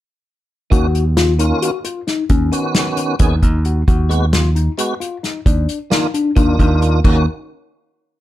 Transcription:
0.70 1.51 D#2 medium
0.70 0.87 D#3 medium
0.70 0.87 A#3 medium
0.70 0.87 C#4 medium
0.70 0.87 F#4 medium
0.70 1.03 F#4 medium
0.70 kick loud
0.70 closed hi-hat medium
0.95 closed hi-hat medium
1.17 1.32 F4 medium
1.17 snare loud
1.17 closed hi-hat medium
1.39 1.71 D#3 medium
1.39 1.71 A#3 medium
1.39 1.71 C#4 medium
1.39 1.55 D#4 medium
1.39 1.71 F4 medium
1.39 closed hi-hat medium
1.62 1.78 F#4 medium
1.62 closed hi-hat medium
1.85 2.00 F4 medium
1.85 closed hi-hat medium
2.07 2.23 D#4 medium
2.07 snare soft
2.07 closed hi-hat medium
2.30 2.50 D#2 medium
2.30 2.61 C#4 medium
2.30 kick medium
2.30 closed hi-hat medium
2.52 3.15 D#3 medium
2.52 3.15 B3 medium
2.52 3.16 C#4 medium
2.52 3.16 F#4 medium
2.52 closed hi-hat medium
2.75 2.90 D#4 medium
2.75 snare loud
2.75 closed hi-hat medium
2.97 3.13 C#4 medium
2.97 closed hi-hat medium
3.19 3.40 D#2 medium
3.19 3.35 D#3 medium
3.19 3.36 B3 medium
3.19 3.36 C#4 medium
3.19 3.36 D#4 medium
3.19 3.36 G#4 medium
3.19 kick loud
3.19 closed hi-hat medium
3.42 3.82 D#2 medium
3.42 3.58 D#4 medium
3.42 kick medium
3.42 closed hi-hat medium
3.65 3.81 F#4 medium
3.65 closed hi-hat medium
3.88 4.67 D#2 medium
3.88 4.19 F#4 medium
3.88 kick loud
3.88 closed hi-hat medium
4.09 4.26 G#3 medium
4.09 4.26 B3 medium
4.09 4.26 F#4 medium
4.09 closed hi-hat medium
4.33 4.49 F4 medium
4.33 snare loud
4.33 closed hi-hat medium
4.55 4.71 D#4 medium
4.55 closed hi-hat medium
4.78 4.94 G#3 medium
4.78 4.94 B3 medium
4.78 4.94 F#4 medium
4.78 4.95 F#4 medium
4.78 closed hi-hat medium
5.00 5.16 F4 medium
5.00 closed hi-hat medium
5.23 5.39 D#4 medium
5.23 snare soft
5.23 closed hi-hat medium
5.46 5.66 D#2 medium
5.46 5.78 D4 medium
5.46 kick loud
5.46 closed hi-hat medium
5.69 closed hi-hat medium
5.90 6.07 D#3 medium
5.90 6.07 A#3 medium
5.90 6.07 D4 medium
5.90 6.07 D#4 medium
5.90 6.07 F4 medium
5.90 snare loud
5.90 closed hi-hat medium
6.14 6.30 D4 medium
6.14 closed hi-hat medium
6.36 6.57 D#2 medium
6.36 7.00 D#3 medium
6.36 7.00 A#3 medium
6.36 6.52 D4 medium
6.36 7.00 D4 medium
6.36 7.00 F4 medium
6.36 kick loud
6.36 closed hi-hat medium
6.59 6.99 D#2 medium
6.59 6.75 D4 medium
6.59 kick medium
6.59 closed hi-hat medium
6.82 6.98 F4 medium
6.82 closed hi-hat medium
7.04 7.26 D#2 medium
7.04 7.26 D#3 medium
7.04 7.26 A#3 medium
7.04 7.26 C#4 medium
7.04 7.26 D#4 medium
7.04 7.26 F#4 medium
7.04 kick loud
7.04 crash medium

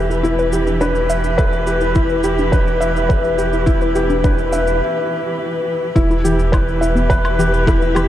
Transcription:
0.00 4.82 E1 medium
0.00 5.92 E3 medium
0.00 0.23 E4 medium
0.00 5.92 E4 medium
0.00 0.53 G4 medium
0.00 5.92 G4 medium
0.00 0.81 B4 medium
0.00 5.92 B4 medium
0.00 1.09 E5 medium
0.10 0.20 E4 medium
0.10 shaker soft
0.23 0.51 E4 medium
0.23 0.35 E4 medium
0.23 shaker soft
0.39 0.53 B4 medium
0.39 shaker soft
0.53 0.80 G4 medium
0.53 shaker medium
0.67 0.77 D4 medium
0.67 shaker soft
0.81 0.95 D4 medium
0.81 1.08 B4 medium
0.81 shaker soft
0.95 shaker soft
1.09 1.37 E5 medium
1.09 1.20 E5 medium
1.09 shaker medium
1.24 shaker soft
1.38 1.48 A4 medium
1.38 1.66 B4 medium
1.38 kick loud
1.38 shaker soft
1.53 shaker soft
1.67 1.94 G4 medium
1.67 shaker medium
1.81 1.92 E4 medium
1.81 shaker soft
1.95 2.23 E4 medium
1.95 2.06 E4 medium
1.95 kick loud
1.95 shaker soft
2.09 2.24 B4 loud
2.09 shaker soft
2.24 2.51 G4 medium
2.24 shaker medium
2.38 2.49 D4 medium
2.38 shaker soft
2.52 2.67 D4 medium
2.52 2.80 B4 medium
2.52 kick loud
2.52 shaker soft
2.67 shaker soft
2.80 3.08 E5 medium
2.80 2.92 E5 medium
2.80 shaker medium
2.96 shaker soft
3.09 3.20 A4 loud
3.09 3.37 B4 medium
3.09 kick loud
3.09 shaker soft
3.24 shaker soft
3.38 3.55 G4 medium
3.38 shaker medium
3.53 3.63 E4 medium
3.53 shaker soft
3.66 3.94 E4 loud
3.66 3.77 E4 medium
3.66 kick loud
3.66 shaker soft
3.81 3.95 B4 medium
3.81 shaker soft
3.95 4.23 G4 medium
3.95 shaker medium
4.10 4.20 D4 medium
4.10 shaker soft
4.24 4.38 D4 medium
4.24 4.51 B4 medium
4.24 kick loud
4.24 shaker soft
4.38 shaker soft
4.52 4.80 E5 medium
4.52 4.63 E5 medium
4.52 shaker medium
4.67 shaker soft
5.96 8.08 E1 medium
5.96 8.08 E3 medium
5.96 6.23 E4 medium
5.96 8.08 E4 medium
5.96 8.08 G4 medium
5.96 8.08 B4 medium
5.96 kick loud
5.96 shaker soft
6.11 6.20 E4 loud
6.11 shaker soft
6.24 6.38 E3 medium
6.24 6.52 G4 medium
6.24 shaker medium
6.39 shaker soft
6.52 6.59 E4 medium
6.52 6.80 B4 medium
6.52 kick loud
6.52 low woodblock medium
6.52 shaker soft
6.68 shaker soft
6.81 6.91 E4 medium
6.81 7.08 E5 medium
6.81 shaker medium
6.95 7.06 B3 medium
6.95 shaker soft
7.10 7.37 B4 loud
7.10 kick loud
7.10 shaker soft
7.25 low woodblock medium
7.25 shaker soft
7.39 7.52 E3 medium
7.39 7.66 G4 medium
7.39 shaker medium
7.53 7.59 B4 medium
7.53 shaker soft
7.67 7.94 E4 medium
7.67 kick loud
7.67 cross-stick medium
7.67 shaker soft
7.82 7.92 E4 loud
7.82 shaker soft
7.95 8.08 E3 medium
7.95 8.08 G4 medium
7.95 low woodblock medium
7.95 shaker medium

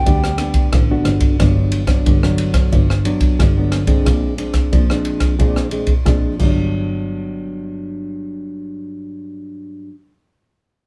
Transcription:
0.00 0.67 G5 medium
0.06 0.63 D2 medium
0.06 0.70 G3 medium
0.06 0.26 B3 medium
0.06 0.26 D4 medium
0.06 0.26 F#4 medium
0.06 kick medium
0.06 ride soft
0.24 cross-stick medium
0.38 0.70 B3 medium
0.38 0.70 D4 medium
0.38 cross-stick medium
0.38 ride soft
0.54 kick medium
0.54 ride soft
0.73 1.03 A1 medium
0.73 1.36 D3 medium
0.73 kick medium
0.73 cross-stick medium
0.73 ride soft
0.90 1.34 B3 medium
0.90 1.35 D4 medium
0.90 1.35 F#4 medium
1.04 1.35 G1 medium
1.04 cross-stick medium
1.04 ride soft
1.20 kick medium
1.20 ride soft
1.39 1.96 G1 medium
1.39 2.03 G2 medium
1.39 1.84 F#3 medium
1.39 1.84 B3 soft
1.39 1.84 D4 medium
1.39 kick medium
1.39 cross-stick medium
1.39 ride medium
1.72 ride medium
1.87 2.16 F#3 medium
1.87 2.16 B3 medium
1.87 2.16 D4 medium
1.87 kick medium
1.87 cross-stick medium
1.87 ride soft
2.06 2.63 G1 medium
2.06 2.69 D3 medium
2.06 kick medium
2.06 ride soft
2.23 2.84 F#3 medium
2.23 2.85 B3 medium
2.23 2.85 D4 medium
2.23 cross-stick medium
2.38 ride medium
2.54 kick medium
2.54 cross-stick medium
2.54 ride soft
2.72 3.01 G1 medium
2.72 3.36 G2 medium
2.72 kick medium
2.72 ride soft
2.90 cross-stick medium
3.05 3.37 F#3 medium
3.05 3.37 B3 medium
3.05 3.37 D4 medium
3.05 ride soft
3.20 kick medium
3.20 ride soft
3.39 3.96 G1 medium
3.39 4.03 D3 medium
3.39 kick medium
3.39 cross-stick medium
3.39 ride soft
3.57 3.84 F#3 medium
3.57 3.85 B3 medium
3.57 3.85 D4 medium
3.72 cross-stick medium
3.72 ride soft
3.87 4.36 G#3 medium
3.87 4.37 C4 medium
3.87 4.37 D4 medium
3.87 kick medium
3.87 ride soft
4.06 4.63 A#1 medium
4.06 4.69 A#2 medium
4.06 kick medium
4.06 cross-stick medium
4.06 ride soft
4.37 4.83 G#3 soft
4.37 4.83 C4 soft
4.37 4.83 D4 medium
4.37 ride soft
4.54 kick soft
4.54 cross-stick medium
4.54 ride soft
4.73 5.29 A#1 medium
4.73 5.36 F3 medium
4.73 kick medium
4.73 ride soft
4.90 5.34 G#3 medium
4.90 5.35 C4 medium
4.90 5.35 D4 medium
4.90 cross-stick medium
5.05 ride soft
5.20 kick medium
5.20 cross-stick medium
5.20 ride soft
5.39 5.68 A#1 medium
5.39 6.03 A#2 soft
5.39 5.67 G#3 soft
5.39 5.67 C4 soft
5.39 5.68 D4 medium
5.39 kick medium
5.39 ride soft
5.56 cross-stick medium
5.71 5.92 G#3 medium
5.71 5.92 C4 soft
5.71 5.92 D4 soft
5.71 ride soft
5.87 kick medium
5.87 ride soft
6.06 6.34 A#1 medium
6.06 6.40 F3 soft
6.06 6.34 G#3 soft
6.06 6.35 C4 medium
6.06 6.35 D4 medium
6.06 kick medium
6.06 cross-stick medium
6.06 ride soft
6.38 9.56 G1 medium
6.38 9.88 G2 soft
6.38 9.91 F#3 medium
6.38 kick medium
6.38 crash soft
6.42 9.92 B3 medium
6.42 9.94 D4 medium

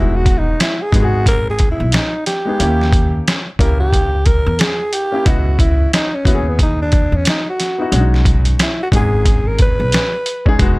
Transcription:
0.00 0.52 E1 medium
0.00 0.78 G#3 medium
0.00 0.76 B3 medium
0.00 0.76 D#4 medium
0.00 0.18 E4 medium
0.00 0.77 F#4 medium
0.16 0.40 F#4 medium
0.26 kick loud
0.26 closed hi-hat medium
0.39 0.60 D#4 medium
0.60 0.83 E4 medium
0.60 snare loud
0.60 closed hi-hat medium
0.82 1.06 G#4 medium
0.92 1.75 G#1 medium
0.92 2.01 G#3 medium
0.92 2.01 B3 medium
0.92 2.02 D#4 medium
0.92 1.02 F#4 medium
0.92 kick medium
0.92 closed hi-hat medium
1.02 1.27 F#4 medium
1.02 2.06 G#4 medium
1.26 1.48 A#4 loud
1.26 kick medium
1.26 closed hi-hat medium
1.50 1.70 G#4 medium
1.59 kick medium
1.59 closed hi-hat medium
1.71 1.95 E4 medium
1.80 1.92 B1 medium
1.92 2.26 D#4 medium
1.92 snare loud
1.92 closed hi-hat medium
2.26 3.23 G4 medium
2.26 snare soft
2.26 closed hi-hat medium
2.45 2.57 G#3 medium
2.45 2.57 B3 medium
2.45 2.58 D#4 medium
2.45 2.58 G#4 medium
2.59 3.19 D#2 loud
2.59 3.42 A#3 medium
2.59 3.43 C#4 medium
2.59 3.44 E4 medium
2.59 3.44 G4 medium
2.59 closed hi-hat medium
2.81 snare soft
2.93 kick loud
2.93 closed hi-hat medium
3.28 snare loud
3.28 closed hi-hat loud
3.59 4.42 C#2 medium
3.59 4.68 A#3 medium
3.59 4.68 C#4 medium
3.59 4.69 E4 medium
3.59 4.69 G4 medium
3.59 3.79 A#4 medium
3.59 kick medium
3.59 closed hi-hat medium
3.80 4.28 G4 loud
3.93 kick medium
3.93 closed hi-hat medium
4.26 4.62 A#4 loud
4.26 kick medium
4.26 closed hi-hat medium
4.46 4.58 E2 loud
4.59 4.95 G#4 medium
4.59 snare loud
4.59 closed hi-hat medium
4.93 5.28 G4 loud
4.93 closed hi-hat medium
5.12 5.23 A#3 medium
5.12 5.23 C#4 medium
5.12 5.24 E4 medium
5.12 5.25 G4 medium
5.25 5.85 C#2 loud
5.25 6.08 B3 medium
5.25 6.10 E4 medium
5.25 5.59 F#4 medium
5.25 6.10 F#4 medium
5.25 6.09 D#5 medium
5.25 kick loud
5.25 closed hi-hat medium
5.59 5.91 E4 medium
5.59 kick loud
5.59 closed hi-hat medium
5.93 6.16 D#4 medium
5.93 snare loud
5.93 closed hi-hat loud
6.15 6.51 C#4 medium
6.24 7.09 D#2 medium
6.24 7.34 B3 medium
6.24 7.35 E4 medium
6.24 6.35 F#4 medium
6.24 kick medium
6.24 closed hi-hat medium
6.35 7.39 G#4 medium
6.49 6.61 B3 medium
6.59 6.80 D#4 medium
6.59 kick medium
6.59 closed hi-hat medium
6.82 7.18 D4 medium
6.92 kick medium
6.92 closed hi-hat medium
7.12 7.24 E2 medium
7.12 7.28 C#4 medium
7.25 7.47 D#4 medium
7.25 snare loud
7.25 closed hi-hat loud
7.50 8.11 F#4 medium
7.60 snare soft
7.60 closed hi-hat medium
7.78 7.90 B3 medium
7.78 7.90 D#4 medium
7.78 7.91 E4 medium
7.78 7.91 F#4 medium
7.92 8.51 B1 loud
7.92 8.75 G#3 medium
7.92 8.76 C#4 medium
7.92 8.01 D4 soft
7.92 8.77 F#4 medium
7.92 closed hi-hat medium
8.00 8.80 D#4 medium
8.14 snare soft
8.25 kick loud
8.25 closed hi-hat medium
8.45 closed hi-hat medium
8.59 8.80 E4 medium
8.59 snare loud
8.59 closed hi-hat loud
8.83 8.88 F#4 medium
8.91 9.75 G#1 medium
8.91 10.00 G#3 medium
8.91 10.01 C#4 medium
8.91 10.02 D#4 medium
8.91 10.02 G#4 medium
8.91 kick medium
8.91 closed hi-hat medium
8.96 9.49 G#4 medium
9.26 kick medium
9.26 closed hi-hat medium
9.48 9.60 A#4 medium
9.59 10.57 B4 medium
9.59 kick medium
9.59 closed hi-hat medium
9.80 9.91 B1 medium
9.92 snare loud
9.92 closed hi-hat medium
10.26 closed hi-hat medium
10.45 10.57 G#3 medium
10.45 10.57 C#4 medium
10.45 10.58 D#4 medium
10.45 10.58 G#4 loud
10.45 kick medium
10.59 10.79 E1 medium
10.59 10.79 G#3 loud
10.59 10.79 B3 medium
10.59 10.79 D#4 medium
10.59 10.79 F#4 loud
10.59 kick loud
10.59 closed hi-hat medium

